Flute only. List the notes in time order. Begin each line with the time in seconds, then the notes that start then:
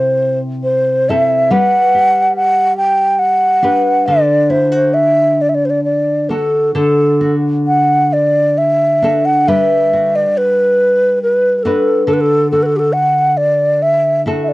Already playing: C5
0.64 C5
1.09 E5
1.51 F#5
2.36 F#5
2.78 G5
3.19 F#5
4.06 D5
4.50 C5
4.94 E5
5.42 D5
5.49 E5
5.55 D5
5.65 C5
5.70 D5
5.84 D5
6.29 A4
6.75 A4
7.67 F#5
8.13 D5
8.58 E5
9.25 F#5
9.48 E5
10.15 D5
10.37 B4
11.23 B4
11.59 B4
11.63 A4
12.07 A4
12.13 B4
12.21 A4
12.51 A4
12.63 A4 B4
12.76 G4 A4
12.93 F#5
13.37 D5
13.82 E5
14.43 E5
14.48 D5